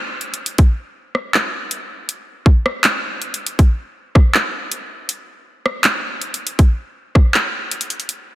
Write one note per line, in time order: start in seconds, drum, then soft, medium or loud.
0.21 closed hi-hat soft
0.34 closed hi-hat medium
0.46 closed hi-hat medium
0.58 kick loud
0.58 closed hi-hat medium
1.15 cross-stick medium
1.34 clap loud
1.71 closed hi-hat medium
2.09 closed hi-hat medium
2.46 kick medium
2.66 cross-stick medium
2.84 clap loud
2.84 closed hi-hat medium
3.22 closed hi-hat soft
3.34 closed hi-hat medium
3.46 closed hi-hat medium
3.59 kick loud
3.59 closed hi-hat medium
4.15 kick medium
4.15 cross-stick medium
4.34 clap loud
4.72 closed hi-hat medium
5.09 closed hi-hat medium
5.66 cross-stick medium
5.84 clap loud
5.84 closed hi-hat medium
6.21 closed hi-hat soft
6.34 closed hi-hat medium
6.47 closed hi-hat medium
6.59 kick loud
6.59 closed hi-hat medium
7.15 kick medium
7.15 cross-stick medium
7.34 clap loud
7.71 closed hi-hat medium
7.81 closed hi-hat medium
7.90 closed hi-hat medium
8.00 closed hi-hat soft
8.09 closed hi-hat medium